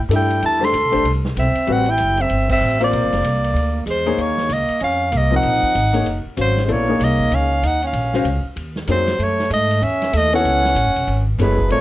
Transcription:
0.09 G2 A3 D4 E4 G4 A4, hi-hat pedal, ride
0.16 G5
0.30 ride
0.42 E2 E4 A5, ride
0.59 A3 D4 G4 C5, snare
0.63 A4 C6
0.73 D2, hi-hat pedal, ride
0.84 C2
0.90 A1 A3 D4 G4 C5, ride
1.04 C2, ride
1.25 snare
1.36 B1 C4 E5, hi-hat pedal, ride
1.55 muted upright bass stroke, ride
1.67 A1 G3 C4 F#4 B4, ride
1.72 F#5
1.86 E4, ride
1.91 G5
1.98 F#1, hi-hat pedal, ride
2.17 C4 E5, ride
2.30 G1, ride
2.49 C4 E5, kick, crash
2.61 A1, hi-hat pedal
2.80 A#3 C4 F4 A#4 C5, ride
2.84 D5
2.93 A#1, ride
3.03 G#1
3.12 F1, snare, ride
3.23 C2, hi-hat pedal, ride
3.44 ride
3.54 D2, ride
3.86 E2 G#3, hi-hat pedal, ride
3.90 C5
4.06 A#3 D#4 G#4 C#5, ride
4.18 D#2 A#3, ride
4.22 C#5
4.38 snare
4.49 C#2 A#3, hi-hat pedal, ride
4.53 D#5
4.69 muted upright bass stroke, ride
4.80 F2 C#4 F5, ride
5.12 C2 A#3, hi-hat pedal, ride
5.17 D#5
5.31 F3 C4 D#4 A#4 D#5
5.36 F#5
5.43 A#1, ride
5.63 muted upright bass stroke, kick
5.75 G#1, hi-hat pedal, ride
5.93 A#3 D#4 G#4 C#5, ride
6.06 F#1, ride
6.25 muted upright bass stroke
6.37 G#1 F#3 C#4 F#4 C5 F5, hi-hat pedal, ride
6.41 C5
6.57 snare
6.64 G#3 B3 E4 C5
6.69 A#1 A#3 A4 C#5 D5, ride
6.88 A#3 D#4 G#4 C#5
7.00 C2 A#3, hi-hat pedal, ride
7.04 D#5
7.20 kick
7.31 C#2 C#4, ride
7.35 F5
7.63 D#2 D#4, hi-hat pedal, ride
7.67 F#5
7.82 C#4, ride
7.87 F5
7.93 A#1, ride
8.13 C#4 F#4 C5 F5, snare
8.24 C#2, hi-hat pedal, ride
8.56 D#2, ride
8.76 snare
8.87 F2 F#3 A#3 D#4 G#4 C5, hi-hat pedal, ride
8.91 C5
9.08 snare, ride
9.19 F#2 A3, ride
9.23 C#5
9.39 snare
9.50 G#2 A3 D#5, hi-hat pedal, ride
9.71 ride
9.82 E2 C#4 E5, ride
10.02 snare, ride
10.13 D#2 A3, hi-hat pedal, ride
10.17 D#5
10.33 B3 C#4 E4 A4 C#5 F#5, ride
10.44 C#2, ride
10.65 snare
10.75 A1, hi-hat pedal, ride
10.86 F#1
10.96 E1, ride
11.07 G#1, ride
11.38 F#1 G#3 B3 E4 A4 B4 C#5, hi-hat pedal, ride
11.59 kick
11.70 A1 A3 C4 F4 A#4 C#5 D5, ride

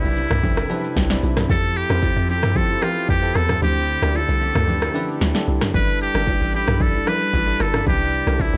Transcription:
Already playing: C3 G3 C4 D4 E4 B4, downlifter
0.04 B1, shaker
0.17 low bongo, shaker
0.30 C2, cross-stick, mid tom, shaker
0.43 C3 C4 D4 E4 A4, kick, low conga, shaker
0.57 cross-stick, high bongo, shaker
0.69 C3 C4 D4 E4 B4 B5, low bongo, low conga, shaker
0.84 shaker
0.97 C2 G5, kick, snare, high bongo, shaker
1.10 C3 C4 D4 E4 D5, snare, shaker
1.23 B1, high bongo, shaker
1.37 cross-stick, snare, mid tom, low bongo, shaker
1.49 F2 F3 C4 E4 G4 A4, kick, low conga, shaker
1.63 shaker
1.76 G4, shaker
1.89 F2 F3 C4 E4 G4 C5, cross-stick, low bongo, shaker
2.02 kick, high bongo, shaker
2.16 F2, shaker
2.29 G4, low bongo, shaker
2.42 G2, cross-stick, mid tom, shaker
2.55 F3 C4 E4 G4 A4 C5, kick, low conga, shaker
2.70 high bongo, shaker
2.82 F3 C4 E4 F4 G4 B4, cross-stick, low bongo, low conga, shaker
2.96 shaker
3.09 F2 G4, kick, high bongo, shaker
3.22 F3 C4 E4 G4 A4, shaker
3.35 E2 A4, cross-stick, high bongo, shaker
3.49 cross-stick, mid tom, low bongo, shaker
3.61 D2 D3 A3 D4 E4 G4 C5, low conga, shaker
3.75 shaker
3.88 shaker
4.02 D2 D3 D4 E4 G4 D5, cross-stick, low bongo, shaker
4.15 A4, high bongo, shaker
4.29 C2, shaker
4.41 low bongo, shaker
4.55 D2, cross-stick, mid tom, shaker
4.67 D3 D4 E4 G4 B4, low conga, shaker
4.82 cross-stick, high bongo, shaker
4.94 D3 D4 E4 G4 B4, low bongo, low conga, shaker
5.08 shaker
5.21 D2, snare, high bongo, shaker
5.34 D3 D4 E4 G4 A4, snare, shaker
5.48 C2, high bongo, shaker
5.61 cross-stick, snare, mid tom, low bongo, shaker
5.74 G1 G3 D4 E4 A4 B4, kick, low conga, shaker
5.88 shaker
6.00 G4, shaker
6.14 G1 G3 D4 E4 A4 D5, cross-stick, low bongo, shaker
6.27 kick, high bongo, shaker
6.41 A1, shaker
6.54 G4, low bongo, shaker
6.67 B1, cross-stick, mid tom, shaker
6.80 G3 D4 E4 A4 D5, kick, low conga, shaker
6.94 high bongo, shaker
7.06 G3 D4 E4 A4 B4 D5, cross-stick, low bongo, low conga, shaker
7.21 shaker
7.34 A1, kick, high bongo, shaker
7.46 G3 D4 E4 A4 B4, shaker
7.60 G1 A4, cross-stick, high bongo, shaker
7.74 cross-stick, mid tom, low bongo, shaker
7.86 C2 C3 C4 D4 E4 G4 B4, kick, low conga, shaker
8.00 shaker
8.13 shaker
8.26 C2 C3 C4 D4 E4 A4, cross-stick, low bongo, shaker
8.39 E4, kick, high bongo, shaker
8.54 B1, shaker

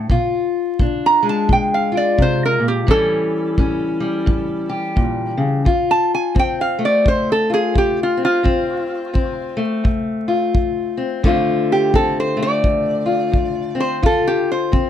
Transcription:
0.10 A#2 F4, kick
0.79 A#2 D4, kick
1.06 A#5
1.23 G#3
1.29 A5
1.49 A#2 G5, kick
1.74 F5
1.92 F4
1.97 D5
2.18 C3, kick
2.22 C5
2.45 A#4
2.60 A#2
2.68 G4
2.87 A2 E3 G3 C#4, kick
2.91 A4
3.58 A2 C#4, kick
4.00 G3
4.26 A2, kick
4.69 G4
4.96 A#2, kick
5.37 C#3
5.65 D2 F4, kick
5.91 A5
6.14 G#5
6.35 D2 C4, kick
6.39 G5
6.61 F5
6.79 A3
6.85 D5
7.04 D2 C5, kick
7.32 A4
7.50 F4 G#4
7.74 D2, kick
7.78 G4
8.03 F4
8.17 C4
8.25 F4
8.43 D2 C4, kick
9.13 D2 C4, kick
9.57 A3
9.84 D2, kick
10.28 F4
10.54 D2, kick
10.97 C4
11.23 D2 D3 A3 C4 F4, kick
11.72 G4
11.93 D2 C4 A4, kick
12.20 C5
12.37 A3
12.42 D5
12.64 D2, kick
13.06 F4
13.32 D2, kick
13.75 C4
13.80 C5
14.02 D2 F4 A4, kick
14.27 G4
14.52 C5
14.72 D2 C4, kick

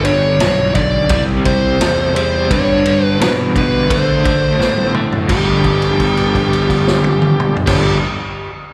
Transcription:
Already playing: G1 B3 D4 G4 F5
0.05 G2 D3 C#5, ride
0.39 B1 G2 E3, snare, ride
0.75 G2 D3 D5, kick, ride
1.09 C2 C3 G3 C4 E4 G4 D5, kick, ride
1.44 C3 G3 C5, kick, ride
1.80 E2 C3 A3, snare, ride
2.15 C3 G3 C5, ride
2.50 G2 D3 B3 D4 G4 C#5 F5, kick, ride
2.86 G2 D3, ride
3.05 B4
3.21 G2 B2 E3 B4, snare, ride
3.55 G2 D3 B4, kick, ride
3.90 D3 A3 D4 F#4 A4 C5, kick, ride
4.24 D3 A3, kick, ride
4.59 A2 D3 B3, snare
4.77 high tom
4.94 D3 A3, mid tom
5.12 floor tom
5.28 G1 G2 D3 F3 B3 F4 G4 A4, kick, crash
5.32 D4
5.64 kick, crash
5.82 crash
6.00 kick, crash
6.17 crash
6.35 kick, crash
6.53 crash
6.70 kick, crash
6.88 snare
7.04 high tom
7.22 mid tom
7.40 mid tom
7.56 floor tom
7.66 G1 G2 D3 F3 B3 F4 G4 A4, kick, snare, crash
7.70 D4

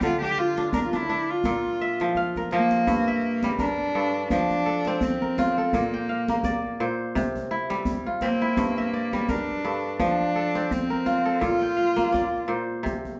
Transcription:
Already playing: C4 F4 G4
0.01 D3 F4, djembe bass
0.21 D4 G4
0.38 F4 G4
0.58 D4, djembe slap
0.73 D4 A#4, djembe bass
0.84 F4
0.93 D4 E4, djembe slap, djembe tone
1.09 D4
1.30 F4
1.44 A#2, djembe bass
1.81 E5
2.00 F3, djembe slap
2.15 F5, djembe bass
2.36 A#4, djembe bass
2.51 F3 A#3, djembe slap
2.71 djembe slap
2.87 G2, djembe bass
3.08 E5
3.43 G3, djembe slap, djembe tone
3.59 D4 A#4, djembe slap, djembe bass
3.94 G2 A4, djembe slap
4.30 F3 D4, djembe bass
4.49 djembe tone
4.65 A4, djembe slap
4.85 C4, djembe slap
5.01 C4, djembe bass
5.21 A#4, djembe slap
5.38 F4, djembe tone
5.58 A4
5.73 A#2 A#3, djembe bass
5.94 G5
6.09 F5
6.28 A#3, djembe slap, djembe tone
6.44 D5, djembe slap, djembe bass
6.80 A#2 C5, djembe slap
7.15 C3, djembe bass
7.36 djembe tone
7.51 E4, djembe slap
7.70 G3, djembe slap
7.85 djembe bass
8.06 F4, djembe slap
8.21 A#3 C4, djembe tone
8.42 E4
8.57 G2, djembe bass
8.78 E5
8.93 D5
9.13 G3, djembe slap, djembe tone
9.29 D4 A#4, djembe slap, djembe bass
9.65 G2 A4, djembe slap
10.00 F3 D4, djembe bass
10.36 A4
10.55 C4, djembe slap
10.71 C4, djembe bass
10.90 A#4, djembe slap
11.06 F4, djembe tone
11.26 A4
11.41 A#2 F4, djembe slap, djembe bass
11.61 G5
11.77 F5
11.96 A#3, djembe slap, djembe tone
12.12 D5, djembe slap, djembe bass
12.48 A#2 C5
12.70 djembe slap
12.83 C3, djembe slap, djembe bass
13.05 djembe tone

